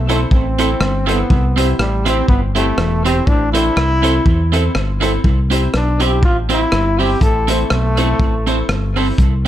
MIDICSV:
0, 0, Header, 1, 7, 480
1, 0, Start_track
1, 0, Key_signature, 0, "major"
1, 0, Tempo, 492611
1, 1270, Time_signature, 4, 2, 24, 8
1, 9233, End_track
2, 0, Start_track
2, 0, Title_t, "Clean electric guitar"
2, 0, Program_c, 0, 27
2, 87, Note_on_c, 0, 60, 80
2, 94, Note_on_c, 0, 64, 83
2, 96, Note_on_c, 0, 69, 80
2, 102, Note_on_c, 0, 72, 89
2, 188, Note_off_c, 0, 60, 0
2, 191, Note_off_c, 0, 64, 0
2, 193, Note_off_c, 0, 69, 0
2, 196, Note_off_c, 0, 72, 0
2, 572, Note_on_c, 0, 60, 94
2, 576, Note_on_c, 0, 64, 89
2, 580, Note_on_c, 0, 69, 87
2, 582, Note_on_c, 0, 72, 82
2, 671, Note_off_c, 0, 60, 0
2, 673, Note_off_c, 0, 64, 0
2, 675, Note_off_c, 0, 69, 0
2, 676, Note_off_c, 0, 72, 0
2, 1039, Note_on_c, 0, 60, 94
2, 1042, Note_on_c, 0, 64, 94
2, 1044, Note_on_c, 0, 69, 92
2, 1051, Note_on_c, 0, 72, 93
2, 1145, Note_off_c, 0, 60, 0
2, 1146, Note_off_c, 0, 64, 0
2, 1147, Note_off_c, 0, 69, 0
2, 1150, Note_off_c, 0, 72, 0
2, 1523, Note_on_c, 0, 60, 84
2, 1530, Note_on_c, 0, 64, 90
2, 1534, Note_on_c, 0, 67, 81
2, 1536, Note_on_c, 0, 72, 89
2, 1627, Note_off_c, 0, 60, 0
2, 1630, Note_off_c, 0, 64, 0
2, 1632, Note_off_c, 0, 67, 0
2, 1633, Note_off_c, 0, 72, 0
2, 2005, Note_on_c, 0, 60, 87
2, 2007, Note_on_c, 0, 64, 87
2, 2011, Note_on_c, 0, 72, 95
2, 2013, Note_on_c, 0, 67, 87
2, 2108, Note_off_c, 0, 60, 0
2, 2108, Note_off_c, 0, 64, 0
2, 2110, Note_off_c, 0, 72, 0
2, 2111, Note_off_c, 0, 67, 0
2, 2487, Note_on_c, 0, 60, 77
2, 2488, Note_on_c, 0, 64, 80
2, 2493, Note_on_c, 0, 67, 88
2, 2493, Note_on_c, 0, 72, 84
2, 2588, Note_off_c, 0, 60, 0
2, 2589, Note_off_c, 0, 64, 0
2, 2592, Note_off_c, 0, 67, 0
2, 2592, Note_off_c, 0, 72, 0
2, 2971, Note_on_c, 0, 60, 88
2, 2975, Note_on_c, 0, 64, 84
2, 2981, Note_on_c, 0, 67, 93
2, 2983, Note_on_c, 0, 72, 95
2, 3070, Note_off_c, 0, 60, 0
2, 3072, Note_off_c, 0, 64, 0
2, 3075, Note_off_c, 0, 67, 0
2, 3076, Note_off_c, 0, 72, 0
2, 3447, Note_on_c, 0, 60, 78
2, 3452, Note_on_c, 0, 64, 82
2, 3454, Note_on_c, 0, 69, 78
2, 3458, Note_on_c, 0, 72, 92
2, 3548, Note_off_c, 0, 60, 0
2, 3551, Note_off_c, 0, 64, 0
2, 3552, Note_off_c, 0, 69, 0
2, 3554, Note_off_c, 0, 72, 0
2, 3921, Note_on_c, 0, 60, 77
2, 3927, Note_on_c, 0, 64, 100
2, 3932, Note_on_c, 0, 69, 98
2, 3937, Note_on_c, 0, 72, 91
2, 4025, Note_off_c, 0, 60, 0
2, 4029, Note_off_c, 0, 64, 0
2, 4031, Note_off_c, 0, 69, 0
2, 4034, Note_off_c, 0, 72, 0
2, 4407, Note_on_c, 0, 60, 85
2, 4412, Note_on_c, 0, 64, 100
2, 4415, Note_on_c, 0, 69, 101
2, 4420, Note_on_c, 0, 72, 110
2, 4509, Note_off_c, 0, 60, 0
2, 4511, Note_off_c, 0, 64, 0
2, 4512, Note_off_c, 0, 69, 0
2, 4515, Note_off_c, 0, 72, 0
2, 4879, Note_on_c, 0, 60, 89
2, 4881, Note_on_c, 0, 64, 95
2, 4890, Note_on_c, 0, 69, 88
2, 4894, Note_on_c, 0, 72, 85
2, 4985, Note_off_c, 0, 60, 0
2, 4986, Note_off_c, 0, 64, 0
2, 4990, Note_off_c, 0, 69, 0
2, 4992, Note_off_c, 0, 72, 0
2, 5362, Note_on_c, 0, 60, 85
2, 5367, Note_on_c, 0, 64, 75
2, 5372, Note_on_c, 0, 67, 92
2, 5376, Note_on_c, 0, 72, 88
2, 5466, Note_off_c, 0, 60, 0
2, 5468, Note_off_c, 0, 64, 0
2, 5471, Note_off_c, 0, 67, 0
2, 5473, Note_off_c, 0, 72, 0
2, 5847, Note_on_c, 0, 60, 82
2, 5850, Note_on_c, 0, 64, 90
2, 5851, Note_on_c, 0, 67, 79
2, 5856, Note_on_c, 0, 72, 98
2, 5949, Note_off_c, 0, 60, 0
2, 5950, Note_off_c, 0, 64, 0
2, 5950, Note_off_c, 0, 67, 0
2, 5953, Note_off_c, 0, 72, 0
2, 6326, Note_on_c, 0, 60, 106
2, 6332, Note_on_c, 0, 64, 96
2, 6334, Note_on_c, 0, 67, 112
2, 6338, Note_on_c, 0, 72, 109
2, 6428, Note_off_c, 0, 60, 0
2, 6431, Note_off_c, 0, 64, 0
2, 6432, Note_off_c, 0, 67, 0
2, 6434, Note_off_c, 0, 72, 0
2, 6812, Note_on_c, 0, 60, 73
2, 6818, Note_on_c, 0, 64, 85
2, 6823, Note_on_c, 0, 67, 85
2, 6823, Note_on_c, 0, 72, 90
2, 6911, Note_off_c, 0, 60, 0
2, 6914, Note_off_c, 0, 64, 0
2, 6917, Note_off_c, 0, 67, 0
2, 6917, Note_off_c, 0, 72, 0
2, 7286, Note_on_c, 0, 60, 84
2, 7287, Note_on_c, 0, 64, 84
2, 7293, Note_on_c, 0, 69, 80
2, 7299, Note_on_c, 0, 72, 90
2, 7388, Note_off_c, 0, 60, 0
2, 7389, Note_off_c, 0, 64, 0
2, 7392, Note_off_c, 0, 69, 0
2, 7394, Note_off_c, 0, 72, 0
2, 7771, Note_on_c, 0, 60, 78
2, 7775, Note_on_c, 0, 64, 77
2, 7776, Note_on_c, 0, 69, 77
2, 7781, Note_on_c, 0, 72, 95
2, 7871, Note_off_c, 0, 60, 0
2, 7872, Note_off_c, 0, 64, 0
2, 7873, Note_off_c, 0, 69, 0
2, 7876, Note_off_c, 0, 72, 0
2, 8250, Note_on_c, 0, 60, 101
2, 8260, Note_on_c, 0, 69, 84
2, 8261, Note_on_c, 0, 64, 92
2, 8266, Note_on_c, 0, 72, 89
2, 8350, Note_off_c, 0, 60, 0
2, 8355, Note_off_c, 0, 69, 0
2, 8356, Note_off_c, 0, 64, 0
2, 8358, Note_off_c, 0, 72, 0
2, 8733, Note_on_c, 0, 60, 79
2, 8740, Note_on_c, 0, 64, 77
2, 8743, Note_on_c, 0, 69, 89
2, 8750, Note_on_c, 0, 72, 73
2, 8832, Note_off_c, 0, 60, 0
2, 8835, Note_off_c, 0, 64, 0
2, 8837, Note_off_c, 0, 69, 0
2, 8840, Note_off_c, 0, 72, 0
2, 9233, End_track
3, 0, Start_track
3, 0, Title_t, "Upright piano"
3, 0, Program_c, 1, 0
3, 85, Note_on_c, 1, 60, 82
3, 90, Note_on_c, 1, 64, 89
3, 93, Note_on_c, 1, 69, 79
3, 95, Note_on_c, 1, 72, 101
3, 230, Note_off_c, 1, 60, 0
3, 232, Note_off_c, 1, 64, 0
3, 234, Note_off_c, 1, 69, 0
3, 235, Note_off_c, 1, 72, 0
3, 569, Note_on_c, 1, 60, 87
3, 575, Note_on_c, 1, 64, 81
3, 578, Note_on_c, 1, 69, 81
3, 582, Note_on_c, 1, 72, 88
3, 712, Note_off_c, 1, 60, 0
3, 715, Note_off_c, 1, 64, 0
3, 716, Note_off_c, 1, 69, 0
3, 719, Note_off_c, 1, 72, 0
3, 1049, Note_on_c, 1, 60, 82
3, 1052, Note_on_c, 1, 64, 82
3, 1057, Note_on_c, 1, 69, 79
3, 1060, Note_on_c, 1, 72, 96
3, 1192, Note_off_c, 1, 60, 0
3, 1194, Note_off_c, 1, 64, 0
3, 1196, Note_off_c, 1, 69, 0
3, 1198, Note_off_c, 1, 72, 0
3, 1527, Note_on_c, 1, 60, 82
3, 1528, Note_on_c, 1, 64, 83
3, 1535, Note_on_c, 1, 67, 75
3, 1538, Note_on_c, 1, 72, 93
3, 1671, Note_off_c, 1, 60, 0
3, 1672, Note_off_c, 1, 64, 0
3, 1675, Note_off_c, 1, 67, 0
3, 1677, Note_off_c, 1, 72, 0
3, 2009, Note_on_c, 1, 60, 99
3, 2014, Note_on_c, 1, 64, 84
3, 2020, Note_on_c, 1, 67, 80
3, 2024, Note_on_c, 1, 72, 105
3, 2152, Note_off_c, 1, 60, 0
3, 2155, Note_off_c, 1, 64, 0
3, 2158, Note_off_c, 1, 67, 0
3, 2160, Note_off_c, 1, 72, 0
3, 2490, Note_on_c, 1, 60, 85
3, 2496, Note_on_c, 1, 64, 78
3, 2496, Note_on_c, 1, 67, 78
3, 2502, Note_on_c, 1, 72, 95
3, 2633, Note_off_c, 1, 60, 0
3, 2636, Note_off_c, 1, 64, 0
3, 2636, Note_off_c, 1, 67, 0
3, 2639, Note_off_c, 1, 72, 0
3, 2968, Note_on_c, 1, 60, 78
3, 2969, Note_on_c, 1, 64, 75
3, 2974, Note_on_c, 1, 67, 81
3, 2978, Note_on_c, 1, 72, 101
3, 3112, Note_off_c, 1, 60, 0
3, 3113, Note_off_c, 1, 64, 0
3, 3115, Note_off_c, 1, 67, 0
3, 3117, Note_off_c, 1, 72, 0
3, 3448, Note_on_c, 1, 60, 79
3, 3451, Note_on_c, 1, 64, 81
3, 3453, Note_on_c, 1, 69, 79
3, 3458, Note_on_c, 1, 72, 102
3, 3592, Note_off_c, 1, 60, 0
3, 3593, Note_off_c, 1, 64, 0
3, 3594, Note_off_c, 1, 69, 0
3, 3597, Note_off_c, 1, 72, 0
3, 3924, Note_on_c, 1, 60, 90
3, 3929, Note_on_c, 1, 64, 85
3, 3934, Note_on_c, 1, 69, 87
3, 3936, Note_on_c, 1, 72, 103
3, 4070, Note_off_c, 1, 60, 0
3, 4072, Note_off_c, 1, 64, 0
3, 4075, Note_off_c, 1, 69, 0
3, 4076, Note_off_c, 1, 72, 0
3, 4407, Note_on_c, 1, 60, 86
3, 4413, Note_on_c, 1, 64, 82
3, 4419, Note_on_c, 1, 69, 83
3, 4420, Note_on_c, 1, 72, 100
3, 4551, Note_off_c, 1, 60, 0
3, 4554, Note_off_c, 1, 64, 0
3, 4557, Note_off_c, 1, 69, 0
3, 4558, Note_off_c, 1, 72, 0
3, 4884, Note_on_c, 1, 60, 96
3, 4891, Note_on_c, 1, 64, 83
3, 4892, Note_on_c, 1, 69, 80
3, 4897, Note_on_c, 1, 72, 98
3, 5030, Note_off_c, 1, 60, 0
3, 5033, Note_off_c, 1, 64, 0
3, 5034, Note_off_c, 1, 69, 0
3, 5036, Note_off_c, 1, 72, 0
3, 5367, Note_on_c, 1, 60, 85
3, 5369, Note_on_c, 1, 64, 81
3, 5375, Note_on_c, 1, 67, 71
3, 5381, Note_on_c, 1, 72, 100
3, 5511, Note_off_c, 1, 60, 0
3, 5512, Note_off_c, 1, 64, 0
3, 5515, Note_off_c, 1, 67, 0
3, 5518, Note_off_c, 1, 72, 0
3, 5847, Note_on_c, 1, 60, 82
3, 5850, Note_on_c, 1, 64, 83
3, 5854, Note_on_c, 1, 67, 93
3, 5858, Note_on_c, 1, 72, 98
3, 5991, Note_off_c, 1, 60, 0
3, 5993, Note_off_c, 1, 64, 0
3, 5995, Note_off_c, 1, 67, 0
3, 5997, Note_off_c, 1, 72, 0
3, 6327, Note_on_c, 1, 60, 81
3, 6329, Note_on_c, 1, 64, 71
3, 6333, Note_on_c, 1, 67, 78
3, 6336, Note_on_c, 1, 72, 102
3, 6471, Note_off_c, 1, 60, 0
3, 6472, Note_off_c, 1, 64, 0
3, 6474, Note_off_c, 1, 67, 0
3, 6476, Note_off_c, 1, 72, 0
3, 6809, Note_on_c, 1, 60, 89
3, 6813, Note_on_c, 1, 64, 82
3, 6818, Note_on_c, 1, 67, 77
3, 6819, Note_on_c, 1, 72, 89
3, 6952, Note_off_c, 1, 60, 0
3, 6954, Note_off_c, 1, 64, 0
3, 6957, Note_off_c, 1, 67, 0
3, 6957, Note_off_c, 1, 72, 0
3, 7294, Note_on_c, 1, 60, 93
3, 7299, Note_on_c, 1, 64, 76
3, 7305, Note_on_c, 1, 69, 81
3, 7309, Note_on_c, 1, 72, 96
3, 7435, Note_off_c, 1, 60, 0
3, 7437, Note_off_c, 1, 64, 0
3, 7440, Note_off_c, 1, 69, 0
3, 7443, Note_off_c, 1, 72, 0
3, 7773, Note_on_c, 1, 60, 86
3, 7779, Note_on_c, 1, 64, 84
3, 7780, Note_on_c, 1, 69, 85
3, 7787, Note_on_c, 1, 72, 96
3, 7915, Note_off_c, 1, 60, 0
3, 7917, Note_off_c, 1, 64, 0
3, 7918, Note_off_c, 1, 69, 0
3, 7922, Note_off_c, 1, 72, 0
3, 8248, Note_on_c, 1, 60, 82
3, 8253, Note_on_c, 1, 64, 76
3, 8254, Note_on_c, 1, 69, 73
3, 8258, Note_on_c, 1, 72, 102
3, 8392, Note_off_c, 1, 60, 0
3, 8394, Note_off_c, 1, 64, 0
3, 8395, Note_off_c, 1, 69, 0
3, 8397, Note_off_c, 1, 72, 0
3, 8732, Note_on_c, 1, 60, 90
3, 8734, Note_on_c, 1, 64, 78
3, 8735, Note_on_c, 1, 69, 73
3, 8741, Note_on_c, 1, 72, 91
3, 8874, Note_off_c, 1, 60, 0
3, 8875, Note_off_c, 1, 64, 0
3, 8876, Note_off_c, 1, 69, 0
3, 8878, Note_off_c, 1, 72, 0
3, 9233, End_track
4, 0, Start_track
4, 0, Title_t, "Trombone"
4, 0, Program_c, 2, 57
4, 106, Note_on_c, 2, 57, 71
4, 200, Note_off_c, 2, 57, 0
4, 329, Note_on_c, 2, 60, 88
4, 1077, Note_on_c, 2, 59, 82
4, 1092, Note_off_c, 2, 60, 0
4, 1546, Note_off_c, 2, 59, 0
4, 1745, Note_on_c, 2, 55, 85
4, 2015, Note_on_c, 2, 60, 93
4, 2030, Note_off_c, 2, 55, 0
4, 2223, Note_off_c, 2, 60, 0
4, 2229, Note_on_c, 2, 59, 84
4, 2349, Note_off_c, 2, 59, 0
4, 2497, Note_on_c, 2, 57, 102
4, 2942, Note_off_c, 2, 57, 0
4, 2977, Note_on_c, 2, 60, 102
4, 3183, Note_on_c, 2, 62, 97
4, 3198, Note_off_c, 2, 60, 0
4, 3437, Note_off_c, 2, 62, 0
4, 3443, Note_on_c, 2, 64, 123
4, 4585, Note_off_c, 2, 64, 0
4, 5610, Note_on_c, 2, 62, 92
4, 5869, Note_on_c, 2, 67, 90
4, 5884, Note_off_c, 2, 62, 0
4, 6077, Note_off_c, 2, 67, 0
4, 6089, Note_on_c, 2, 65, 90
4, 6204, Note_off_c, 2, 65, 0
4, 6353, Note_on_c, 2, 64, 116
4, 6824, Note_on_c, 2, 67, 107
4, 6838, Note_off_c, 2, 64, 0
4, 7034, Note_off_c, 2, 67, 0
4, 7041, Note_on_c, 2, 69, 105
4, 7282, Note_off_c, 2, 69, 0
4, 7326, Note_on_c, 2, 57, 110
4, 8446, Note_off_c, 2, 57, 0
4, 9233, End_track
5, 0, Start_track
5, 0, Title_t, "Fingered electric bass"
5, 0, Program_c, 3, 33
5, 0, Note_on_c, 3, 35, 95
5, 236, Note_off_c, 3, 35, 0
5, 308, Note_on_c, 3, 33, 94
5, 717, Note_off_c, 3, 33, 0
5, 781, Note_on_c, 3, 31, 115
5, 1193, Note_off_c, 3, 31, 0
5, 1272, Note_on_c, 3, 36, 96
5, 1679, Note_off_c, 3, 36, 0
5, 1744, Note_on_c, 3, 33, 93
5, 2155, Note_off_c, 3, 33, 0
5, 2229, Note_on_c, 3, 31, 94
5, 2637, Note_off_c, 3, 31, 0
5, 2705, Note_on_c, 3, 28, 101
5, 3115, Note_off_c, 3, 28, 0
5, 3187, Note_on_c, 3, 33, 114
5, 3596, Note_off_c, 3, 33, 0
5, 3669, Note_on_c, 3, 36, 97
5, 4078, Note_off_c, 3, 36, 0
5, 4147, Note_on_c, 3, 40, 86
5, 4556, Note_off_c, 3, 40, 0
5, 4631, Note_on_c, 3, 31, 102
5, 5039, Note_off_c, 3, 31, 0
5, 5110, Note_on_c, 3, 36, 105
5, 5518, Note_off_c, 3, 36, 0
5, 5592, Note_on_c, 3, 35, 97
5, 6067, Note_off_c, 3, 35, 0
5, 6067, Note_on_c, 3, 33, 92
5, 6476, Note_off_c, 3, 33, 0
5, 6552, Note_on_c, 3, 31, 100
5, 6959, Note_off_c, 3, 31, 0
5, 7026, Note_on_c, 3, 33, 109
5, 7436, Note_off_c, 3, 33, 0
5, 7511, Note_on_c, 3, 35, 94
5, 7918, Note_off_c, 3, 35, 0
5, 7981, Note_on_c, 3, 33, 94
5, 8393, Note_off_c, 3, 33, 0
5, 8464, Note_on_c, 3, 31, 105
5, 8875, Note_off_c, 3, 31, 0
5, 8946, Note_on_c, 3, 36, 113
5, 9233, Note_off_c, 3, 36, 0
5, 9233, End_track
6, 0, Start_track
6, 0, Title_t, "Muted clean electric guitar strokes"
6, 2712, Note_on_c, 9, 29, 39
6, 2810, Note_off_c, 9, 29, 0
6, 3666, Note_on_c, 9, 29, 38
6, 3764, Note_off_c, 9, 29, 0
6, 6550, Note_on_c, 9, 29, 35
6, 6648, Note_off_c, 9, 29, 0
6, 7507, Note_on_c, 9, 29, 41
6, 7604, Note_off_c, 9, 29, 0
6, 9233, End_track
7, 0, Start_track
7, 0, Title_t, "Drums"
7, 91, Note_on_c, 9, 42, 79
7, 188, Note_off_c, 9, 42, 0
7, 304, Note_on_c, 9, 36, 95
7, 401, Note_off_c, 9, 36, 0
7, 571, Note_on_c, 9, 42, 80
7, 669, Note_off_c, 9, 42, 0
7, 785, Note_on_c, 9, 37, 109
7, 882, Note_off_c, 9, 37, 0
7, 1056, Note_on_c, 9, 42, 76
7, 1153, Note_off_c, 9, 42, 0
7, 1268, Note_on_c, 9, 36, 114
7, 1366, Note_off_c, 9, 36, 0
7, 1535, Note_on_c, 9, 42, 105
7, 1633, Note_off_c, 9, 42, 0
7, 1748, Note_on_c, 9, 37, 111
7, 1845, Note_off_c, 9, 37, 0
7, 2008, Note_on_c, 9, 42, 85
7, 2105, Note_off_c, 9, 42, 0
7, 2226, Note_on_c, 9, 36, 105
7, 2323, Note_off_c, 9, 36, 0
7, 2496, Note_on_c, 9, 42, 81
7, 2593, Note_off_c, 9, 42, 0
7, 2707, Note_on_c, 9, 37, 100
7, 2805, Note_off_c, 9, 37, 0
7, 2977, Note_on_c, 9, 42, 87
7, 3075, Note_off_c, 9, 42, 0
7, 3188, Note_on_c, 9, 36, 112
7, 3285, Note_off_c, 9, 36, 0
7, 3457, Note_on_c, 9, 42, 108
7, 3554, Note_off_c, 9, 42, 0
7, 3672, Note_on_c, 9, 37, 111
7, 3770, Note_off_c, 9, 37, 0
7, 3936, Note_on_c, 9, 42, 89
7, 4033, Note_off_c, 9, 42, 0
7, 4148, Note_on_c, 9, 36, 117
7, 4246, Note_off_c, 9, 36, 0
7, 4418, Note_on_c, 9, 42, 86
7, 4516, Note_off_c, 9, 42, 0
7, 4627, Note_on_c, 9, 37, 106
7, 4724, Note_off_c, 9, 37, 0
7, 4895, Note_on_c, 9, 42, 81
7, 4992, Note_off_c, 9, 42, 0
7, 5108, Note_on_c, 9, 36, 113
7, 5206, Note_off_c, 9, 36, 0
7, 5374, Note_on_c, 9, 42, 95
7, 5471, Note_off_c, 9, 42, 0
7, 5590, Note_on_c, 9, 37, 106
7, 5687, Note_off_c, 9, 37, 0
7, 5847, Note_on_c, 9, 42, 80
7, 5945, Note_off_c, 9, 42, 0
7, 6067, Note_on_c, 9, 36, 106
7, 6165, Note_off_c, 9, 36, 0
7, 6331, Note_on_c, 9, 42, 83
7, 6429, Note_off_c, 9, 42, 0
7, 6548, Note_on_c, 9, 37, 104
7, 6645, Note_off_c, 9, 37, 0
7, 6815, Note_on_c, 9, 46, 49
7, 6912, Note_off_c, 9, 46, 0
7, 7026, Note_on_c, 9, 44, 63
7, 7027, Note_on_c, 9, 36, 117
7, 7123, Note_off_c, 9, 44, 0
7, 7125, Note_off_c, 9, 36, 0
7, 7290, Note_on_c, 9, 42, 105
7, 7388, Note_off_c, 9, 42, 0
7, 7506, Note_on_c, 9, 37, 113
7, 7604, Note_off_c, 9, 37, 0
7, 7769, Note_on_c, 9, 42, 87
7, 7867, Note_off_c, 9, 42, 0
7, 7985, Note_on_c, 9, 36, 106
7, 8083, Note_off_c, 9, 36, 0
7, 8254, Note_on_c, 9, 42, 76
7, 8352, Note_off_c, 9, 42, 0
7, 8467, Note_on_c, 9, 37, 114
7, 8565, Note_off_c, 9, 37, 0
7, 8734, Note_on_c, 9, 46, 54
7, 8831, Note_off_c, 9, 46, 0
7, 8948, Note_on_c, 9, 36, 115
7, 8949, Note_on_c, 9, 44, 56
7, 9046, Note_off_c, 9, 36, 0
7, 9047, Note_off_c, 9, 44, 0
7, 9233, End_track
0, 0, End_of_file